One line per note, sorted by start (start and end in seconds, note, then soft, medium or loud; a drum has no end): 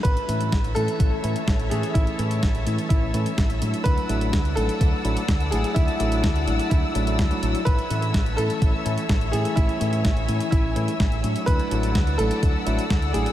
0.03 0.15 A1 medium
0.03 0.71 B4 loud
0.03 3.82 C#5 medium
0.03 3.82 E5 medium
0.03 3.82 A5 medium
0.03 11.44 E6 medium
0.03 kick loud
0.03 closed hi-hat medium
0.17 closed hi-hat soft
0.28 0.49 A2 medium
0.28 0.55 E3 medium
0.28 0.55 A3 medium
0.28 0.55 C#4 medium
0.28 0.55 E4 loud
0.28 closed hi-hat medium
0.41 closed hi-hat medium
0.52 0.73 A1 medium
0.52 kick loud
0.52 snare loud
0.52 closed hi-hat medium
0.64 closed hi-hat soft
0.75 0.87 A2 loud
0.75 1.21 E3 medium
0.75 1.21 A3 medium
0.75 1.21 C#4 medium
0.75 1.21 E4 medium
0.75 1.74 A4 loud
0.75 closed hi-hat medium
0.88 closed hi-hat soft
1.00 1.10 A1 loud
1.00 kick loud
1.00 closed hi-hat medium
1.24 1.34 A2 medium
1.24 1.40 E3 medium
1.24 1.40 A3 medium
1.24 1.40 C#4 medium
1.24 1.40 E4 loud
1.24 closed hi-hat medium
1.36 closed hi-hat medium
1.48 1.68 A1 medium
1.48 kick loud
1.48 snare loud
1.48 closed hi-hat medium
1.59 closed hi-hat soft
1.70 1.82 A2 medium
1.70 2.16 E3 medium
1.70 2.16 A3 medium
1.70 2.16 C#4 medium
1.70 2.16 E4 medium
1.70 1.95 G#4 medium
1.70 closed hi-hat medium
1.83 closed hi-hat medium
1.94 2.06 A1 loud
1.94 2.87 E4 medium
1.94 kick loud
1.94 closed hi-hat medium
2.07 closed hi-hat soft
2.19 2.40 A2 medium
2.19 2.45 E3 medium
2.19 2.45 A3 medium
2.19 2.45 C#4 medium
2.19 2.45 E4 loud
2.19 closed hi-hat medium
2.31 closed hi-hat medium
2.43 2.64 A1 medium
2.43 kick loud
2.43 snare loud
2.43 closed hi-hat medium
2.55 closed hi-hat soft
2.66 2.77 A2 loud
2.66 3.11 E3 medium
2.66 3.11 A3 medium
2.66 3.11 C#4 medium
2.66 3.11 E4 medium
2.66 closed hi-hat medium
2.78 closed hi-hat medium
2.89 3.11 A1 medium
2.89 3.57 E4 medium
2.89 kick loud
2.89 closed hi-hat medium
3.14 3.25 A2 medium
3.14 3.30 E3 medium
3.14 3.30 A3 medium
3.14 3.30 C#4 medium
3.14 3.30 E4 loud
3.14 closed hi-hat medium
3.26 closed hi-hat medium
3.38 3.59 A1 medium
3.38 kick loud
3.38 snare loud
3.38 closed hi-hat medium
3.50 closed hi-hat soft
3.62 3.72 A2 medium
3.62 4.07 F#3 medium
3.62 4.07 A3 medium
3.62 4.07 D4 medium
3.62 4.07 E4 medium
3.62 closed hi-hat medium
3.74 closed hi-hat medium
3.84 3.96 D2 medium
3.84 4.52 B4 loud
3.84 7.63 D5 medium
3.84 7.63 F#5 medium
3.84 7.63 A5 medium
3.84 kick loud
3.84 closed hi-hat medium
3.98 closed hi-hat soft
4.09 4.30 A1 medium
4.09 4.36 F#3 medium
4.09 4.36 A3 medium
4.09 4.36 D4 medium
4.09 4.36 E4 loud
4.09 closed hi-hat medium
4.21 closed hi-hat medium
4.33 4.54 D2 medium
4.33 kick loud
4.33 snare loud
4.33 closed hi-hat medium
4.45 closed hi-hat soft
4.55 4.67 A1 loud
4.55 5.02 F#3 medium
4.55 5.02 A3 medium
4.55 5.02 D4 medium
4.55 5.02 E4 medium
4.55 5.54 A4 loud
4.55 closed hi-hat medium
4.69 closed hi-hat medium
4.81 4.91 D2 loud
4.81 kick loud
4.81 closed hi-hat medium
5.04 5.15 A1 medium
5.04 5.21 F#3 medium
5.04 5.21 A3 medium
5.04 5.21 D4 medium
5.04 5.21 E4 loud
5.04 closed hi-hat medium
5.17 closed hi-hat medium
5.28 5.49 D2 medium
5.28 kick loud
5.28 snare loud
5.28 closed hi-hat medium
5.40 closed hi-hat soft
5.51 5.63 A1 medium
5.51 5.97 F#3 medium
5.51 5.97 A3 medium
5.51 5.97 D4 medium
5.51 5.97 E4 medium
5.51 5.76 G#4 medium
5.51 closed hi-hat medium
5.64 closed hi-hat medium
5.74 5.87 D2 loud
5.74 6.68 E4 medium
5.74 kick loud
5.74 closed hi-hat medium
5.88 closed hi-hat soft
6.00 6.21 A1 medium
6.00 6.26 F#3 medium
6.00 6.26 A3 medium
6.00 6.26 D4 medium
6.00 6.26 E4 loud
6.00 closed hi-hat medium
6.12 closed hi-hat medium
6.24 6.45 D2 medium
6.24 kick loud
6.24 snare loud
6.24 closed hi-hat medium
6.36 closed hi-hat soft
6.47 6.58 A1 loud
6.47 6.92 F#3 medium
6.47 6.92 A3 medium
6.47 6.92 D4 medium
6.47 6.92 E4 medium
6.47 closed hi-hat medium
6.59 closed hi-hat soft
6.70 6.82 D2 medium
6.70 7.38 E4 medium
6.70 kick loud
6.70 closed hi-hat medium
6.95 7.16 A1 medium
6.95 7.05 F#3 medium
6.95 7.05 A3 medium
6.95 7.05 D4 medium
6.95 7.05 E4 loud
6.95 closed hi-hat medium
7.07 7.23 F#3 medium
7.07 7.23 A3 medium
7.07 7.23 D4 medium
7.07 7.23 E4 medium
7.07 closed hi-hat soft
7.19 7.29 D2 medium
7.19 kick loud
7.19 snare loud
7.19 closed hi-hat medium
7.31 7.41 F#3 medium
7.31 7.41 A3 medium
7.31 7.41 D4 medium
7.31 7.41 E4 loud
7.31 closed hi-hat soft
7.43 7.53 A1 medium
7.43 7.59 F#3 medium
7.43 7.59 A3 medium
7.43 7.59 D4 medium
7.43 7.59 E4 medium
7.43 closed hi-hat medium
7.55 closed hi-hat soft
7.65 7.77 A1 medium
7.65 8.39 B4 loud
7.65 11.44 C#5 medium
7.65 11.44 E5 medium
7.65 9.55 A5 medium
7.65 kick loud
7.65 closed hi-hat medium
7.79 closed hi-hat soft
7.90 8.11 A2 medium
7.90 8.16 E3 medium
7.90 8.16 A3 medium
7.90 8.16 C#4 medium
7.90 8.16 E4 loud
7.90 closed hi-hat medium
8.02 closed hi-hat soft
8.14 8.35 A1 medium
8.14 kick medium
8.14 snare loud
8.14 closed hi-hat medium
8.26 closed hi-hat soft
8.37 8.48 A2 loud
8.37 8.83 E3 medium
8.37 8.83 A3 medium
8.37 8.83 C#4 medium
8.37 8.83 E4 medium
8.37 9.35 A4 loud
8.37 closed hi-hat medium
8.50 closed hi-hat soft
8.62 8.72 A1 medium
8.62 kick loud
8.62 closed hi-hat medium
8.86 8.96 A2 medium
8.86 9.02 E3 loud
8.86 9.02 A3 medium
8.86 9.02 C#4 medium
8.86 9.02 E4 loud
8.86 closed hi-hat medium
8.98 closed hi-hat soft
9.09 9.30 A1 medium
9.09 kick loud
9.09 snare loud
9.09 closed hi-hat medium
9.21 closed hi-hat soft
9.32 9.44 A2 medium
9.32 9.78 E3 medium
9.32 9.78 A3 medium
9.32 9.78 C#4 medium
9.32 9.78 E4 medium
9.32 9.57 G#4 medium
9.32 closed hi-hat medium
9.45 closed hi-hat soft
9.56 9.67 A1 loud
9.56 10.49 E4 medium
9.56 11.46 G#5 medium
9.56 kick loud
9.56 closed hi-hat medium
9.69 closed hi-hat soft
9.81 10.02 A2 medium
9.81 10.07 E3 medium
9.81 10.07 A3 medium
9.81 10.07 C#4 medium
9.81 10.07 E4 loud
9.81 closed hi-hat medium
9.93 closed hi-hat soft
10.05 10.26 A1 medium
10.05 kick loud
10.05 snare loud
10.05 closed hi-hat medium
10.17 closed hi-hat soft
10.28 10.39 A2 loud
10.28 10.73 E3 medium
10.28 10.73 A3 medium
10.28 10.73 C#4 medium
10.28 10.73 E4 medium
10.28 closed hi-hat medium
10.40 closed hi-hat soft
10.51 10.73 A1 medium
10.51 11.19 E4 medium
10.51 kick loud
10.51 closed hi-hat medium
10.76 10.87 A2 medium
10.76 10.92 E3 medium
10.76 10.92 A3 medium
10.76 10.92 C#4 medium
10.76 10.92 E4 loud
10.76 closed hi-hat medium
10.88 closed hi-hat soft
11.00 11.21 A1 medium
11.00 kick loud
11.00 snare loud
11.00 closed hi-hat medium
11.12 closed hi-hat soft
11.24 11.34 A2 loud
11.24 11.68 F#3 medium
11.24 11.68 A3 medium
11.24 11.68 D4 medium
11.24 11.68 E4 medium
11.24 closed hi-hat medium
11.36 closed hi-hat soft
11.46 11.58 D2 loud
11.46 12.20 B4 loud
11.46 13.32 D5 medium
11.46 13.32 F#5 medium
11.46 13.32 A5 medium
11.46 13.32 E6 medium
11.46 kick loud
11.46 closed hi-hat medium
11.59 closed hi-hat soft
11.71 11.92 A1 medium
11.71 11.97 F#3 medium
11.71 11.97 A3 medium
11.71 11.97 D4 medium
11.71 11.97 E4 loud
11.71 closed hi-hat medium
11.83 closed hi-hat medium
11.95 12.16 D2 medium
11.95 kick loud
11.95 snare loud
11.95 closed hi-hat medium
12.07 closed hi-hat soft
12.18 12.29 A1 loud
12.18 12.64 F#3 medium
12.18 12.64 A3 medium
12.18 12.64 D4 medium
12.18 12.64 E4 medium
12.18 13.16 A4 loud
12.18 closed hi-hat medium
12.31 closed hi-hat soft
12.43 12.53 D2 loud
12.43 kick loud
12.43 closed hi-hat medium
12.66 12.77 A1 medium
12.66 12.83 F#3 loud
12.66 12.83 A3 medium
12.66 12.83 D4 medium
12.66 12.83 E4 loud
12.66 closed hi-hat medium
12.79 closed hi-hat medium
12.90 13.11 D2 medium
12.90 kick loud
12.90 snare loud
12.90 closed hi-hat medium
13.02 closed hi-hat soft
13.13 13.25 A1 medium
13.13 13.32 F#3 medium
13.13 13.32 A3 medium
13.13 13.32 D4 medium
13.13 13.32 E4 medium
13.13 13.32 G#4 medium
13.13 closed hi-hat medium
13.26 closed hi-hat soft